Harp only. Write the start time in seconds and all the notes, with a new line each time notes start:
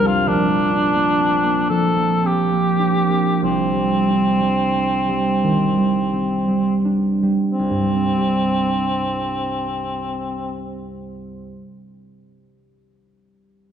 Already playing: C2 C4 D4 G4
0.04 G3
0.27 A#1
0.48 A#3
0.71 D4
0.94 A#3
1.19 C4
1.43 A#3
1.69 F3
1.96 A#3
2.23 C4
2.51 A#3
2.79 D4
3.08 A#3
3.42 C2
3.73 G3
4.08 D4
4.40 G3
4.75 C4
5.08 G3
5.44 D#3
5.78 G3
6.13 C4
6.48 G3
6.85 D4
7.23 G3
7.59 C2
7.70 G2
7.83 G3
7.94 C4
8.06 D4
8.18 G4